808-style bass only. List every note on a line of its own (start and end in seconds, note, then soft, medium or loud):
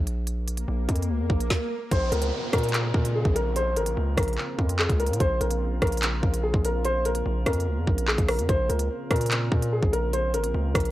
0.00 0.65 A#1 loud
0.68 0.88 A#1 loud
0.89 1.11 F2 loud
1.09 1.21 C#2 loud
1.20 1.29 F2 loud
1.30 1.50 A#1 loud
1.91 2.11 A#1 loud
2.12 2.32 C#2 loud
2.53 2.93 A#2 loud
2.94 3.24 A#2 loud
3.25 3.78 A#1 loud
3.76 3.88 G#1 loud
3.87 3.96 A#1 loud
3.97 4.17 C#2 loud
4.18 4.37 A#1 loud
4.59 4.88 F2 loud
4.89 5.11 C#2 loud
5.10 5.20 A#2 loud
5.20 5.40 A#1 loud
5.41 5.80 A#1 loud
5.82 6.21 A#1 loud
6.23 6.53 A#1 loud
6.54 7.23 A#1 loud
7.26 7.45 A#1 loud
7.46 7.68 F2 loud
7.67 7.79 C#2 loud
7.77 7.87 F2 loud
7.87 8.17 A#1 loud
8.18 8.40 A#1 loud
8.39 8.48 F2 loud
8.49 8.69 A#1 loud
8.70 8.89 C#2 loud
9.11 9.50 A#2 loud
9.52 9.81 A#2 loud
9.83 10.35 A#1 loud
10.34 10.46 G#1 loud
10.44 10.54 A#1 loud
10.54 10.74 C#2 loud
10.75 10.91 A#1 loud